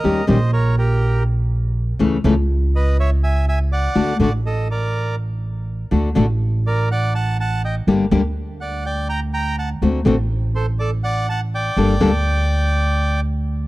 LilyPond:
<<
  \new Staff \with { instrumentName = "Bandoneon" } { \time 4/4 \key g \minor \tempo 4 = 123 <bes' ees''>8 <c'' ees''>8 <bes' des''>8 <g' bes'>4 r4. | r4. <b' ees''>8 <cis'' e''>8 <e'' aes''>8 <e'' aes''>8 <d'' fis''>8~ | <d'' fis''>8 <d'' fis''>8 <a' ees''>8 <bes' d''>4 r4. | r4. <bes' d''>8 <d'' fis''>8 <fis'' a''>8 <fis'' a''>8 <ees'' g''>8 |
r4. <d'' fis''>8 <d'' g''>8 <g'' bes''>8 <g'' bes''>8 <fis'' a''>8 | r4. <a' c''>8 <a' d''>8 <d'' fis''>8 <fis'' a''>8 <d'' g''>8~ | <d'' g''>2. r4 | }
  \new Staff \with { instrumentName = "Nylon-string guitar" } { \time 4/4 \key g \minor <ees g des' g'>8 <ees g des' g'>8 r2. | <cis e a cis' e'>8 <cis e a cis' e'>8 r2. | <d a d' fis'>8 <d a d' fis'>8 r2. | <d a d' fis'>8 <d a d' fis'>8 r2. |
<d g bes d' g'>8 <d g bes d' g'>8 r2. | <d a c' fis'>8 <d a c' fis'>8 r2. | <d g bes d' a'>8 <d g bes d' a'>8 r2. | }
  \new Staff \with { instrumentName = "Upright bass" } { \clef bass \time 4/4 \key g \minor ees,8 bes,,2.~ bes,,8 | cis,8 cis,2.~ cis,8 | d,8 a,,2.~ a,,8 | d,8 a,,2.~ a,,8 |
g,,8 d,2.~ d,8 | d,8 a,,2.~ a,,8 | g,,8 d,2.~ d,8 | }
>>